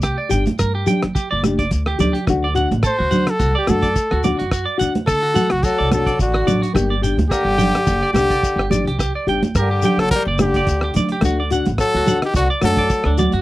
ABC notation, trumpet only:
X:1
M:4/4
L:1/16
Q:"Swing 16ths" 1/4=107
K:Dphr
V:1 name="Trumpet"
z16 | z4 c3 A2 G A4 z2 | z4 A3 ^F A2 A2 F3 z | z4 G6 G4 z2 |
z4 G3 A B2 G4 z2 | z4 A3 G ^F2 A4 z2 |]